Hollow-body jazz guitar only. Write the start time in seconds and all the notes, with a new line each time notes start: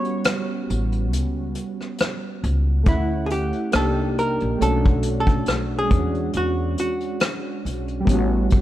Already playing: C#5
2.88 E4
3.26 G#4
3.32 G4
3.76 A4
4.19 A#4
4.62 A4
5.20 A4
5.79 G#4
6.37 F#4
6.80 F#4